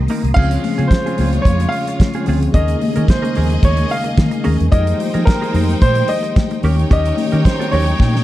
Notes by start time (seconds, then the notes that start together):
Already playing: D3 D#3 G3 A#3 C4 G4 A#4 A#5 C6 D#6
0.08 A#3 D#4 A#4, open hi-hat, muted conga, high conga
0.24 C2, muted clean electric guitar stroke, closed hi-hat
0.34 C#2 C#3 F3 G#3 C4 C#4 F4 G#4 C#5 F5, kick, crash, low conga
0.39 G#4
0.51 closed hi-hat
0.62 F3 G#3 C#4 G#4, open hi-hat, muted conga, high conga
0.78 C#3 C4 F4 G#4, closed hi-hat
0.88 C5, kick, closed hi-hat
0.93 snare
1.05 C4 F4 G#4, closed hi-hat, high conga
1.18 C#2 C4 F4 G#4, open hi-hat, muted conga, high conga, low conga
1.33 closed hi-hat, low conga
1.42 F2 C#5, kick, high conga
1.46 muted clean electric guitar stroke, closed hi-hat
1.60 muted clean electric guitar stroke, closed hi-hat
1.69 F5, open hi-hat
1.87 muted clean electric guitar stroke, closed hi-hat
2.00 muted clean electric guitar stroke, kick, snare, closed hi-hat, muted conga, high conga
2.14 C4 F4 G#4, closed hi-hat
2.24 D2 F3 G#3 C4 C#4 G#4, open hi-hat, muted conga, high conga
2.28 F4 G#4
2.42 muted clean electric guitar stroke, closed hi-hat
2.53 D#2 D#3 G#3 A#3 C#4 D#4 G#4 A#4 D#5, kick, closed hi-hat, muted conga, low conga
2.68 closed hi-hat
2.81 D#3 G#3 A#3 C#4 G4, muted clean electric guitar stroke, open hi-hat, muted conga, high conga
2.89 G#4
2.96 D#3 C#4 G#4 A#4, closed hi-hat
3.08 C5, kick, snare, closed hi-hat, muted conga
3.22 C#4 G#4 A#4, closed hi-hat, high conga
3.35 D#2 C#4 G#4 A#4, open hi-hat, muted conga, high conga, low conga
3.50 muted clean electric guitar stroke, closed hi-hat, low conga
3.63 D#2 C#5, muted clean electric guitar stroke, kick, closed hi-hat, high conga
3.77 muted clean electric guitar stroke, closed hi-hat
3.89 F5, open hi-hat
4.04 muted clean electric guitar stroke, closed hi-hat
4.17 D#3, kick, snare, closed hi-hat, muted conga, high conga
4.31 muted clean electric guitar stroke, closed hi-hat
4.44 D#2 D#3 G#3 A#3 C#4 G#4 A#4, open hi-hat, high conga
4.59 E2, muted clean electric guitar stroke, closed hi-hat
4.70 F2 D#3 F3 G#3 A#3 D#4 G4 G#4 A#4 C5 D#5 G5, kick, closed hi-hat, low conga
4.87 closed hi-hat
4.99 F3 G#3 A#3 D#4 G4, open hi-hat, muted conga, high conga
5.14 F3 D#4 G#4 A#4, closed hi-hat
5.25 A#4, kick, snare, closed hi-hat, muted conga
5.41 D#4 G#4 A#4, closed hi-hat, high conga
5.54 F2 D#4 G#4 A#4, open hi-hat, muted conga, high conga, low conga
5.69 muted clean electric guitar stroke, closed hi-hat, low conga
5.82 A#2 C5, muted clean electric guitar stroke, kick, closed hi-hat, high conga
5.95 muted clean electric guitar stroke, closed hi-hat
6.08 D#5, open hi-hat
6.23 muted clean electric guitar stroke, closed hi-hat
6.36 kick, snare, closed hi-hat, high conga
6.51 muted clean electric guitar stroke, closed hi-hat
6.63 D#2 D#3 G3 A#3 C#4 D#4 G4 A#4 C#5 G5, open hi-hat, high conga
6.78 muted clean electric guitar stroke, closed hi-hat
6.90 D#2 C#4 G4 A#4 D#5, kick, closed hi-hat, low conga
7.05 closed hi-hat
7.17 D#3 G3 A#3 C#4 F#4, open hi-hat, muted conga, high conga
7.25 G4
7.32 D#3 C#4 G4 A#4, closed hi-hat
7.45 C5, kick, snare, closed hi-hat, muted conga
7.59 C#4 G4 A#4, closed hi-hat, high conga
7.72 D#2 C#4 G4 A#4 C#5, open hi-hat, high conga, low conga
7.86 muted clean electric guitar stroke, closed hi-hat, low conga
7.99 A#2, muted clean electric guitar stroke, kick, snare, high conga
8.14 muted clean electric guitar stroke, snare